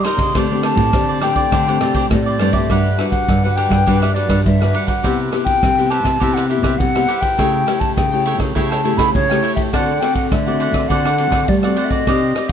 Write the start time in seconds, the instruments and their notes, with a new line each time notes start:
Already playing: nylon-string guitar G3
0.04 nylon-string guitar A#3 D#4 G4, cavaquinho D#4 A#4 C5 D#5, flute C6, cross-stick, ride
0.17 nylon-string guitar C#3, cavaquinho C5 D#5, kick, ride
0.21 cavaquinho A#4
0.35 nylon-string guitar D3 A3 C4 G4, cavaquinho D4 G4 C5 D5, kick, cross-stick, ride
0.51 nylon-string guitar A3 C4 G4
0.63 cavaquinho D4 G4 C5 D5, flute A5, cross-stick, ride
0.76 nylon-string guitar A2, kick, ride
0.93 nylon-string guitar A2 D3 A3 C4 G4, kick, cross-stick, ride
1.09 cavaquinho G4 C5 D5
1.21 nylon-string guitar A3 C4 G4, cavaquinho D4 G4 C5 D5, flute G5, cross-stick, ride
1.36 cavaquinho G4 C5 D5, kick, ride
1.52 nylon-string guitar D3, cavaquinho D4 G4 C5 D5, kick, cross-stick, ride
1.68 nylon-string guitar A3 C4 G4, cavaquinho D4 G4 C5 D5
1.80 nylon-string guitar C3, cavaquinho D4 G4 C5 D5, cross-stick, ride
1.94 cavaquinho D4 G4 C5 D5, kick, ride
2.11 nylon-string guitar A2 A3 C4 G4, flute D5, kick, cross-stick, ride
2.26 cavaquinho G4 C5 D5
2.39 nylon-string guitar G2 A3 C4 G4, cavaquinho D4 G4 C5 D5, cross-stick, ride
2.53 cavaquinho G4 C5 D5, flute E5, kick, ride
2.70 nylon-string guitar G2 G3 D4 F#4 B4, cavaquinho D4 G4 B4 F#5, kick, cross-stick, ride
2.98 cavaquinho D4 G4 B4 F#5, nylon-string guitar D4 F#4 B4, cross-stick, ride
3.10 flute F#5, kick, ride
3.28 nylon-string guitar G2 D3, kick, cross-stick, ride
3.44 nylon-string guitar D4 F#4 B4, cavaquinho G4 B4 F#5
3.56 cavaquinho D4 G4 B4 F#5, flute G5, ride
3.69 nylon-string guitar G2, cavaquinho G4 B4 F#5, kick, cross-stick, ride
3.86 nylon-string guitar G2 G3 D4 F#4 B4, cavaquinho D4 G4 B4 F#5, kick, ride
4.02 cavaquinho D4 G4 B4 F#5, flute E5, cross-stick
4.14 cavaquinho D4 G4 B4 F#5, nylon-string guitar D4 F#4 B4, flute D5, ride
4.28 nylon-string guitar G2, cavaquinho D4 G4 B4 F#5, kick, cross-stick, ride
4.44 nylon-string guitar G2 D3, flute E5, kick, ride
4.60 nylon-string guitar D4 F#4 B4, cavaquinho G4 B4 F#5, cross-stick
4.73 cavaquinho D4 G4 B4 F#5, ride
4.87 cavaquinho G4 B4 F#5, flute F#5, kick, ride
5.03 nylon-string guitar C3 B3 E4 G4, cavaquinho G4 B4 C5 E5, kick, cross-stick, ride
5.31 nylon-string guitar B3 E4 G4, cavaquinho G4 B4 C5 E5, cross-stick, ride
5.45 flute G5, kick, ride
5.63 nylon-string guitar C3 G3, kick, cross-stick, ride
5.77 nylon-string guitar B3 E4 G4, cavaquinho B4 C5 E5
5.90 cavaquinho G4 B4 C5 E5, flute A5, ride
6.03 nylon-string guitar C3, cavaquinho B4 C5 E5, kick, cross-stick, ride
6.20 nylon-string guitar C3 B3 E4 G4, cavaquinho G4 B4 C5 E5, kick, ride
6.34 cavaquinho G4 B4 C5 E5, flute F#5, cross-stick
6.48 nylon-string guitar B3 E4 G4, cavaquinho G4 B4 C5 E5, flute E5, ride
6.62 nylon-string guitar C3, cavaquinho G4 B4 C5 E5, kick, cross-stick, ride
6.78 nylon-string guitar C3 G3, flute F#5, kick, ride
6.95 nylon-string guitar B3 E4 G4, cavaquinho B4 C5 E5, cross-stick
7.08 cavaquinho G4 B4 C5 E5, ride
7.21 cavaquinho B4 C5 E5, flute G5, kick, ride
7.38 nylon-string guitar C#3 A3 E4 G4, cavaquinho E4 A4 C#5 G5, kick, cross-stick, ride
7.67 nylon-string guitar A3 E4 G4, cavaquinho E4 A4 C#5 G5, cross-stick, ride
7.80 flute A5, kick, ride
7.96 nylon-string guitar C#3, flute G5, kick, cross-stick, ride
8.12 nylon-string guitar A3 E4 G4, cavaquinho A4 C#5 G5
8.25 cavaquinho E4 A4 C#5 G5, ride
8.38 nylon-string guitar C#3, cavaquinho A4 C#5 G5, kick, cross-stick, ride
8.55 nylon-string guitar C#3 A3 E4 G4, cavaquinho E4 A4 C#5 G5, kick, ride
8.70 cavaquinho E4 A4 C#5 G5, flute A5, cross-stick
8.84 nylon-string guitar A3 E4 G4, cavaquinho E4 A4 C#5 G5, ride
8.97 nylon-string guitar C#3, cavaquinho E4 A4 C#5 G5, flute B5, kick, cross-stick, ride
9.14 nylon-string guitar C#3, flute C#5, kick, ride
9.30 nylon-string guitar A3 E4 G4, cavaquinho A4 C#5 G5, cross-stick
9.43 cavaquinho E4 A4 C#5 G5, ride
9.55 cavaquinho A4 C#5 G5, flute E5, kick, ride
9.72 nylon-string guitar D3 C4 F#4 A4, cavaquinho D4 C5 D5 F#5, flute F#5, kick, cross-stick, ride
10.00 nylon-string guitar C4 F#4 A4, cavaquinho D4 C5 D5 F#5, flute G5, cross-stick, ride
10.14 flute F#5, kick, ride
10.31 nylon-string guitar D3 A3, flute E5, kick, cross-stick, ride
10.46 nylon-string guitar C4 F#4 A4, cavaquinho C5 D5 F#5
10.60 cavaquinho D4 C5 D5 F#5, ride
10.72 nylon-string guitar D3, cavaquinho D5 F#5, kick, cross-stick, ride
10.76 cavaquinho C5
10.88 nylon-string guitar D3 C4 F#4 A4, cavaquinho D4 C5 D5 F#5, flute F#5, kick, ride
11.05 cavaquinho D4 C5 D5 F#5, cross-stick
11.18 nylon-string guitar C4 F#4 A4, cavaquinho D4 C5 D5 F#5, ride
11.30 nylon-string guitar D3, cavaquinho D4 C5 D5 F#5, kick, cross-stick, ride
11.48 nylon-string guitar G3 A3, flute D5, kick, ride
11.63 nylon-string guitar C4 F#4 A4, cavaquinho C5 D5 F#5, cross-stick
11.76 cavaquinho D4 C5 D5 F#5, ride
11.85 flute E5
11.90 cavaquinho C5 D5 F#5, flute D#5, kick, ride
12.07 nylon-string guitar C3 C4 D#4 G4 D5, cavaquinho D4 G4 C5 D#5, kick, cross-stick, ride
12.36 nylon-string guitar D#4 G4 D5, cavaquinho G4 C5 D#5, cross-stick, ride